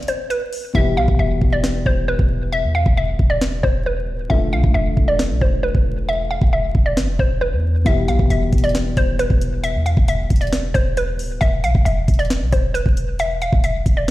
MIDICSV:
0, 0, Header, 1, 5, 480
1, 0, Start_track
1, 0, Tempo, 444444
1, 808, Time_signature, 4, 2, 24, 8
1, 15236, End_track
2, 0, Start_track
2, 0, Title_t, "Synth pluck"
2, 0, Program_c, 0, 84
2, 90, Note_on_c, 0, 72, 77
2, 284, Note_off_c, 0, 72, 0
2, 326, Note_on_c, 0, 71, 80
2, 778, Note_off_c, 0, 71, 0
2, 809, Note_on_c, 0, 76, 110
2, 1004, Note_off_c, 0, 76, 0
2, 1050, Note_on_c, 0, 77, 84
2, 1244, Note_off_c, 0, 77, 0
2, 1287, Note_on_c, 0, 76, 86
2, 1626, Note_off_c, 0, 76, 0
2, 1648, Note_on_c, 0, 74, 75
2, 1986, Note_off_c, 0, 74, 0
2, 2010, Note_on_c, 0, 72, 80
2, 2204, Note_off_c, 0, 72, 0
2, 2249, Note_on_c, 0, 71, 85
2, 2699, Note_off_c, 0, 71, 0
2, 2727, Note_on_c, 0, 76, 111
2, 2923, Note_off_c, 0, 76, 0
2, 2968, Note_on_c, 0, 77, 76
2, 3163, Note_off_c, 0, 77, 0
2, 3212, Note_on_c, 0, 76, 92
2, 3548, Note_off_c, 0, 76, 0
2, 3562, Note_on_c, 0, 74, 77
2, 3903, Note_off_c, 0, 74, 0
2, 3923, Note_on_c, 0, 72, 84
2, 4120, Note_off_c, 0, 72, 0
2, 4171, Note_on_c, 0, 71, 78
2, 4621, Note_off_c, 0, 71, 0
2, 4642, Note_on_c, 0, 76, 107
2, 4840, Note_off_c, 0, 76, 0
2, 4890, Note_on_c, 0, 77, 84
2, 5084, Note_off_c, 0, 77, 0
2, 5122, Note_on_c, 0, 76, 85
2, 5463, Note_off_c, 0, 76, 0
2, 5485, Note_on_c, 0, 74, 78
2, 5825, Note_off_c, 0, 74, 0
2, 5847, Note_on_c, 0, 72, 76
2, 6043, Note_off_c, 0, 72, 0
2, 6083, Note_on_c, 0, 71, 88
2, 6536, Note_off_c, 0, 71, 0
2, 6573, Note_on_c, 0, 76, 110
2, 6766, Note_off_c, 0, 76, 0
2, 6810, Note_on_c, 0, 77, 90
2, 7005, Note_off_c, 0, 77, 0
2, 7051, Note_on_c, 0, 76, 86
2, 7388, Note_off_c, 0, 76, 0
2, 7406, Note_on_c, 0, 74, 72
2, 7745, Note_off_c, 0, 74, 0
2, 7770, Note_on_c, 0, 72, 77
2, 7964, Note_off_c, 0, 72, 0
2, 8006, Note_on_c, 0, 71, 82
2, 8458, Note_off_c, 0, 71, 0
2, 8489, Note_on_c, 0, 76, 109
2, 8684, Note_off_c, 0, 76, 0
2, 8730, Note_on_c, 0, 77, 86
2, 8924, Note_off_c, 0, 77, 0
2, 8967, Note_on_c, 0, 76, 84
2, 9306, Note_off_c, 0, 76, 0
2, 9327, Note_on_c, 0, 74, 76
2, 9666, Note_off_c, 0, 74, 0
2, 9689, Note_on_c, 0, 72, 83
2, 9884, Note_off_c, 0, 72, 0
2, 9929, Note_on_c, 0, 71, 83
2, 10379, Note_off_c, 0, 71, 0
2, 10406, Note_on_c, 0, 76, 108
2, 10602, Note_off_c, 0, 76, 0
2, 10647, Note_on_c, 0, 77, 74
2, 10843, Note_off_c, 0, 77, 0
2, 10891, Note_on_c, 0, 76, 91
2, 11228, Note_off_c, 0, 76, 0
2, 11240, Note_on_c, 0, 74, 76
2, 11582, Note_off_c, 0, 74, 0
2, 11602, Note_on_c, 0, 72, 83
2, 11800, Note_off_c, 0, 72, 0
2, 11851, Note_on_c, 0, 71, 75
2, 12301, Note_off_c, 0, 71, 0
2, 12320, Note_on_c, 0, 76, 105
2, 12519, Note_off_c, 0, 76, 0
2, 12569, Note_on_c, 0, 77, 83
2, 12764, Note_off_c, 0, 77, 0
2, 12802, Note_on_c, 0, 76, 83
2, 13143, Note_off_c, 0, 76, 0
2, 13165, Note_on_c, 0, 74, 76
2, 13505, Note_off_c, 0, 74, 0
2, 13527, Note_on_c, 0, 72, 77
2, 13722, Note_off_c, 0, 72, 0
2, 13762, Note_on_c, 0, 71, 89
2, 14216, Note_off_c, 0, 71, 0
2, 14253, Note_on_c, 0, 76, 112
2, 14446, Note_off_c, 0, 76, 0
2, 14490, Note_on_c, 0, 77, 87
2, 14685, Note_off_c, 0, 77, 0
2, 14731, Note_on_c, 0, 76, 86
2, 15068, Note_off_c, 0, 76, 0
2, 15087, Note_on_c, 0, 74, 77
2, 15236, Note_off_c, 0, 74, 0
2, 15236, End_track
3, 0, Start_track
3, 0, Title_t, "Grand piano"
3, 0, Program_c, 1, 0
3, 792, Note_on_c, 1, 47, 64
3, 798, Note_on_c, 1, 52, 64
3, 803, Note_on_c, 1, 55, 69
3, 809, Note_on_c, 1, 64, 61
3, 814, Note_on_c, 1, 67, 75
3, 1040, Control_c, 1, 64, 127
3, 4597, Note_off_c, 1, 47, 0
3, 4600, Note_off_c, 1, 52, 0
3, 4602, Note_off_c, 1, 55, 0
3, 4605, Note_off_c, 1, 64, 0
3, 4608, Note_off_c, 1, 67, 0
3, 4635, Note_on_c, 1, 50, 65
3, 4646, Note_on_c, 1, 57, 61
3, 4652, Note_on_c, 1, 65, 65
3, 4657, Note_on_c, 1, 69, 72
3, 4661, Control_c, 1, 64, 0
3, 4863, Control_c, 1, 64, 127
3, 8438, Note_off_c, 1, 50, 0
3, 8444, Note_off_c, 1, 57, 0
3, 8446, Note_off_c, 1, 65, 0
3, 8449, Note_off_c, 1, 69, 0
3, 8472, Note_on_c, 1, 47, 66
3, 8478, Note_on_c, 1, 52, 63
3, 8483, Note_on_c, 1, 55, 69
3, 8489, Note_on_c, 1, 64, 60
3, 8494, Note_on_c, 1, 67, 74
3, 8502, Control_c, 1, 64, 0
3, 8677, Control_c, 1, 64, 127
3, 10361, Note_off_c, 1, 47, 0
3, 10364, Note_off_c, 1, 52, 0
3, 10367, Note_off_c, 1, 55, 0
3, 10370, Note_off_c, 1, 64, 0
3, 10373, Note_off_c, 1, 67, 0
3, 12340, Control_c, 1, 64, 0
3, 15236, End_track
4, 0, Start_track
4, 0, Title_t, "808-style bass"
4, 0, Program_c, 2, 38
4, 807, Note_on_c, 2, 28, 108
4, 1048, Note_on_c, 2, 35, 98
4, 1064, Note_off_c, 2, 28, 0
4, 1162, Note_off_c, 2, 35, 0
4, 1168, Note_on_c, 2, 28, 100
4, 1283, Note_off_c, 2, 28, 0
4, 1288, Note_on_c, 2, 28, 109
4, 1518, Note_off_c, 2, 28, 0
4, 1528, Note_on_c, 2, 28, 104
4, 1989, Note_off_c, 2, 28, 0
4, 2007, Note_on_c, 2, 28, 105
4, 2353, Note_off_c, 2, 28, 0
4, 2367, Note_on_c, 2, 28, 109
4, 2848, Note_on_c, 2, 40, 96
4, 2864, Note_off_c, 2, 28, 0
4, 3076, Note_off_c, 2, 40, 0
4, 3088, Note_on_c, 2, 28, 98
4, 3433, Note_off_c, 2, 28, 0
4, 3448, Note_on_c, 2, 28, 105
4, 3909, Note_off_c, 2, 28, 0
4, 3927, Note_on_c, 2, 28, 104
4, 4408, Note_on_c, 2, 26, 98
4, 4424, Note_off_c, 2, 28, 0
4, 4636, Note_off_c, 2, 26, 0
4, 4648, Note_on_c, 2, 28, 105
4, 4888, Note_on_c, 2, 35, 98
4, 4904, Note_off_c, 2, 28, 0
4, 5002, Note_off_c, 2, 35, 0
4, 5008, Note_on_c, 2, 28, 101
4, 5123, Note_off_c, 2, 28, 0
4, 5128, Note_on_c, 2, 28, 110
4, 5358, Note_off_c, 2, 28, 0
4, 5368, Note_on_c, 2, 28, 107
4, 5728, Note_on_c, 2, 35, 101
4, 5744, Note_off_c, 2, 28, 0
4, 5842, Note_off_c, 2, 35, 0
4, 5847, Note_on_c, 2, 28, 100
4, 6193, Note_off_c, 2, 28, 0
4, 6207, Note_on_c, 2, 28, 103
4, 6898, Note_off_c, 2, 28, 0
4, 6928, Note_on_c, 2, 28, 101
4, 7273, Note_off_c, 2, 28, 0
4, 7288, Note_on_c, 2, 28, 102
4, 7528, Note_on_c, 2, 31, 101
4, 7544, Note_off_c, 2, 28, 0
4, 7648, Note_on_c, 2, 28, 102
4, 7664, Note_off_c, 2, 31, 0
4, 7762, Note_off_c, 2, 28, 0
4, 7767, Note_on_c, 2, 28, 105
4, 8128, Note_on_c, 2, 40, 97
4, 8144, Note_off_c, 2, 28, 0
4, 8470, Note_off_c, 2, 40, 0
4, 8487, Note_on_c, 2, 28, 107
4, 8728, Note_on_c, 2, 35, 103
4, 8744, Note_off_c, 2, 28, 0
4, 8842, Note_off_c, 2, 35, 0
4, 8848, Note_on_c, 2, 28, 100
4, 8963, Note_off_c, 2, 28, 0
4, 8967, Note_on_c, 2, 28, 107
4, 9198, Note_off_c, 2, 28, 0
4, 9208, Note_on_c, 2, 28, 105
4, 9669, Note_off_c, 2, 28, 0
4, 9687, Note_on_c, 2, 28, 105
4, 10033, Note_off_c, 2, 28, 0
4, 10047, Note_on_c, 2, 28, 107
4, 10528, Note_on_c, 2, 40, 100
4, 10544, Note_off_c, 2, 28, 0
4, 10756, Note_off_c, 2, 40, 0
4, 10768, Note_on_c, 2, 28, 101
4, 11113, Note_off_c, 2, 28, 0
4, 11128, Note_on_c, 2, 28, 102
4, 11589, Note_off_c, 2, 28, 0
4, 11607, Note_on_c, 2, 28, 109
4, 12088, Note_on_c, 2, 26, 99
4, 12104, Note_off_c, 2, 28, 0
4, 12316, Note_off_c, 2, 26, 0
4, 12327, Note_on_c, 2, 28, 105
4, 12567, Note_on_c, 2, 35, 98
4, 12584, Note_off_c, 2, 28, 0
4, 12681, Note_off_c, 2, 35, 0
4, 12688, Note_on_c, 2, 28, 103
4, 12803, Note_off_c, 2, 28, 0
4, 12808, Note_on_c, 2, 28, 109
4, 13038, Note_off_c, 2, 28, 0
4, 13048, Note_on_c, 2, 28, 106
4, 13408, Note_on_c, 2, 35, 103
4, 13424, Note_off_c, 2, 28, 0
4, 13522, Note_off_c, 2, 35, 0
4, 13527, Note_on_c, 2, 28, 104
4, 13873, Note_off_c, 2, 28, 0
4, 13887, Note_on_c, 2, 28, 101
4, 14578, Note_off_c, 2, 28, 0
4, 14608, Note_on_c, 2, 28, 103
4, 14953, Note_off_c, 2, 28, 0
4, 14968, Note_on_c, 2, 28, 106
4, 15223, Note_off_c, 2, 28, 0
4, 15236, End_track
5, 0, Start_track
5, 0, Title_t, "Drums"
5, 28, Note_on_c, 9, 42, 64
5, 87, Note_off_c, 9, 42, 0
5, 87, Note_on_c, 9, 42, 89
5, 195, Note_off_c, 9, 42, 0
5, 328, Note_on_c, 9, 42, 78
5, 436, Note_off_c, 9, 42, 0
5, 568, Note_on_c, 9, 46, 83
5, 676, Note_off_c, 9, 46, 0
5, 807, Note_on_c, 9, 36, 113
5, 915, Note_off_c, 9, 36, 0
5, 1168, Note_on_c, 9, 36, 106
5, 1276, Note_off_c, 9, 36, 0
5, 1528, Note_on_c, 9, 36, 90
5, 1636, Note_off_c, 9, 36, 0
5, 1767, Note_on_c, 9, 38, 119
5, 1875, Note_off_c, 9, 38, 0
5, 2007, Note_on_c, 9, 36, 84
5, 2115, Note_off_c, 9, 36, 0
5, 2367, Note_on_c, 9, 36, 94
5, 2475, Note_off_c, 9, 36, 0
5, 3088, Note_on_c, 9, 36, 100
5, 3196, Note_off_c, 9, 36, 0
5, 3448, Note_on_c, 9, 36, 93
5, 3556, Note_off_c, 9, 36, 0
5, 3687, Note_on_c, 9, 38, 122
5, 3795, Note_off_c, 9, 38, 0
5, 3927, Note_on_c, 9, 36, 87
5, 4035, Note_off_c, 9, 36, 0
5, 4647, Note_on_c, 9, 36, 113
5, 4755, Note_off_c, 9, 36, 0
5, 5008, Note_on_c, 9, 36, 107
5, 5116, Note_off_c, 9, 36, 0
5, 5368, Note_on_c, 9, 36, 90
5, 5476, Note_off_c, 9, 36, 0
5, 5608, Note_on_c, 9, 38, 123
5, 5716, Note_off_c, 9, 38, 0
5, 5847, Note_on_c, 9, 36, 89
5, 5955, Note_off_c, 9, 36, 0
5, 6207, Note_on_c, 9, 36, 95
5, 6315, Note_off_c, 9, 36, 0
5, 6928, Note_on_c, 9, 36, 103
5, 7036, Note_off_c, 9, 36, 0
5, 7288, Note_on_c, 9, 36, 93
5, 7396, Note_off_c, 9, 36, 0
5, 7527, Note_on_c, 9, 38, 119
5, 7635, Note_off_c, 9, 38, 0
5, 7767, Note_on_c, 9, 36, 87
5, 7875, Note_off_c, 9, 36, 0
5, 8488, Note_on_c, 9, 36, 119
5, 8488, Note_on_c, 9, 42, 77
5, 8596, Note_off_c, 9, 36, 0
5, 8596, Note_off_c, 9, 42, 0
5, 8730, Note_on_c, 9, 42, 74
5, 8838, Note_off_c, 9, 42, 0
5, 8848, Note_on_c, 9, 36, 101
5, 8956, Note_off_c, 9, 36, 0
5, 8967, Note_on_c, 9, 42, 84
5, 9075, Note_off_c, 9, 42, 0
5, 9208, Note_on_c, 9, 36, 93
5, 9208, Note_on_c, 9, 42, 77
5, 9267, Note_off_c, 9, 42, 0
5, 9267, Note_on_c, 9, 42, 68
5, 9316, Note_off_c, 9, 36, 0
5, 9328, Note_off_c, 9, 42, 0
5, 9328, Note_on_c, 9, 42, 54
5, 9387, Note_off_c, 9, 42, 0
5, 9387, Note_on_c, 9, 42, 44
5, 9447, Note_on_c, 9, 38, 125
5, 9448, Note_off_c, 9, 42, 0
5, 9448, Note_on_c, 9, 42, 79
5, 9555, Note_off_c, 9, 38, 0
5, 9556, Note_off_c, 9, 42, 0
5, 9687, Note_on_c, 9, 36, 88
5, 9687, Note_on_c, 9, 42, 90
5, 9795, Note_off_c, 9, 36, 0
5, 9795, Note_off_c, 9, 42, 0
5, 9928, Note_on_c, 9, 42, 81
5, 10036, Note_off_c, 9, 42, 0
5, 10047, Note_on_c, 9, 36, 97
5, 10155, Note_off_c, 9, 36, 0
5, 10168, Note_on_c, 9, 42, 87
5, 10276, Note_off_c, 9, 42, 0
5, 10408, Note_on_c, 9, 42, 80
5, 10516, Note_off_c, 9, 42, 0
5, 10650, Note_on_c, 9, 42, 74
5, 10758, Note_off_c, 9, 42, 0
5, 10768, Note_on_c, 9, 36, 105
5, 10876, Note_off_c, 9, 36, 0
5, 10888, Note_on_c, 9, 42, 81
5, 10996, Note_off_c, 9, 42, 0
5, 11127, Note_on_c, 9, 42, 80
5, 11128, Note_on_c, 9, 36, 90
5, 11188, Note_off_c, 9, 42, 0
5, 11188, Note_on_c, 9, 42, 68
5, 11236, Note_off_c, 9, 36, 0
5, 11248, Note_off_c, 9, 42, 0
5, 11248, Note_on_c, 9, 42, 55
5, 11308, Note_off_c, 9, 42, 0
5, 11308, Note_on_c, 9, 42, 43
5, 11367, Note_on_c, 9, 38, 127
5, 11368, Note_off_c, 9, 42, 0
5, 11368, Note_on_c, 9, 42, 80
5, 11475, Note_off_c, 9, 38, 0
5, 11476, Note_off_c, 9, 42, 0
5, 11607, Note_on_c, 9, 36, 87
5, 11607, Note_on_c, 9, 42, 90
5, 11715, Note_off_c, 9, 36, 0
5, 11715, Note_off_c, 9, 42, 0
5, 11849, Note_on_c, 9, 42, 78
5, 11957, Note_off_c, 9, 42, 0
5, 12088, Note_on_c, 9, 46, 87
5, 12196, Note_off_c, 9, 46, 0
5, 12327, Note_on_c, 9, 36, 111
5, 12328, Note_on_c, 9, 42, 79
5, 12435, Note_off_c, 9, 36, 0
5, 12436, Note_off_c, 9, 42, 0
5, 12570, Note_on_c, 9, 42, 75
5, 12678, Note_off_c, 9, 42, 0
5, 12688, Note_on_c, 9, 36, 107
5, 12796, Note_off_c, 9, 36, 0
5, 12808, Note_on_c, 9, 42, 85
5, 12916, Note_off_c, 9, 42, 0
5, 13048, Note_on_c, 9, 36, 96
5, 13048, Note_on_c, 9, 42, 80
5, 13108, Note_off_c, 9, 42, 0
5, 13108, Note_on_c, 9, 42, 66
5, 13156, Note_off_c, 9, 36, 0
5, 13168, Note_off_c, 9, 42, 0
5, 13168, Note_on_c, 9, 42, 53
5, 13228, Note_off_c, 9, 42, 0
5, 13228, Note_on_c, 9, 42, 43
5, 13287, Note_on_c, 9, 38, 124
5, 13288, Note_off_c, 9, 42, 0
5, 13288, Note_on_c, 9, 42, 77
5, 13395, Note_off_c, 9, 38, 0
5, 13396, Note_off_c, 9, 42, 0
5, 13527, Note_on_c, 9, 36, 88
5, 13527, Note_on_c, 9, 42, 90
5, 13635, Note_off_c, 9, 36, 0
5, 13635, Note_off_c, 9, 42, 0
5, 13769, Note_on_c, 9, 42, 83
5, 13877, Note_off_c, 9, 42, 0
5, 13887, Note_on_c, 9, 36, 97
5, 13995, Note_off_c, 9, 36, 0
5, 14008, Note_on_c, 9, 42, 84
5, 14116, Note_off_c, 9, 42, 0
5, 14248, Note_on_c, 9, 42, 76
5, 14356, Note_off_c, 9, 42, 0
5, 14490, Note_on_c, 9, 42, 75
5, 14598, Note_off_c, 9, 42, 0
5, 14608, Note_on_c, 9, 36, 105
5, 14716, Note_off_c, 9, 36, 0
5, 14728, Note_on_c, 9, 42, 85
5, 14836, Note_off_c, 9, 42, 0
5, 14968, Note_on_c, 9, 36, 93
5, 14969, Note_on_c, 9, 42, 77
5, 15076, Note_off_c, 9, 36, 0
5, 15077, Note_off_c, 9, 42, 0
5, 15236, End_track
0, 0, End_of_file